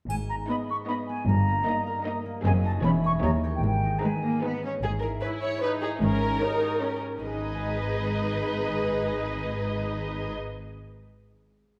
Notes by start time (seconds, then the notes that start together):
0.09 G#1 G#2 G#5, triangle
0.29 B3 A#5
0.48 B3 D#4 D#5 B5
0.69 B4 C#6
0.87 B3 D#4 D#5 B5
1.07 B3 G#5
1.27 G1 G2 A#5
1.48 A#3
1.66 A#3 D#4 D#5
1.87 A#4
2.04 A#3 D#4 D#5
2.26 A#3
2.45 F#1 F#2 C4 G#4 D#5 G#5
2.64 D#4 D#5 A5
2.82 E1 E2 E3 C#4 G#4 C#5 B5
3.03 G#4 C#5 C#6
3.21 D#2 D#3 D#4 G4 C#5 A#5
3.43 G4 C#5
3.55 G5
3.63 G#1 G#2 G5
3.83 D#4
3.98 G#4 A#5
4.03 G#3 D#4 B4 G#5
4.23 A#3 D#5
4.42 B3 D#4 G#4 B4
4.64 C#4 D#4
4.83 G#1 G#2 G#4
5.02 E4 A#4
5.21 E4 G#4 B4 C#5
5.42 C#5
5.60 G#4 B4 C#5
5.64 D#4
5.82 E4 G#4
6.01 G#1 G#2 C#4 A#4
6.22 D#4
6.40 D#4 G4 C#5
6.61 C#5
6.80 C#4 G4 C#5
7.00 D#4
7.19 G#1 G#2 D#4 G#4 B4 D#5
7.27 G#3
7.34 D#4
7.41 G#4
7.48 D#5
7.55 G#5